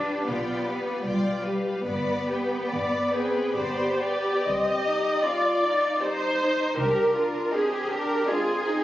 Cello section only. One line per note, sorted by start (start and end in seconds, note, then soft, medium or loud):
0.00 0.26 D4 medium
0.26 1.03 B3 medium
1.04 1.86 G3 medium
1.86 3.96 B3 medium
4.45 4.83 C4 soft
4.86 5.24 D#4 soft
5.25 5.63 F4 medium
5.64 6.78 D#4 medium
6.77 7.16 G4 medium
7.15 7.53 F4 medium
7.53 8.28 G4 medium
8.28 8.68 F4 medium
8.67 8.84 D#4 medium